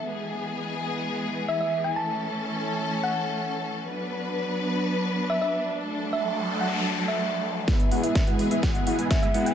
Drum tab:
HH |----------------|----------------|----------------|----------------|
SD |----------------|----------------|----------------|----------------|
BD |----------------|----------------|----------------|----------------|

HH |xxoxxxoxxxoxxxox|
SD |o---o---o---o---|
BD |o---o---o---o---|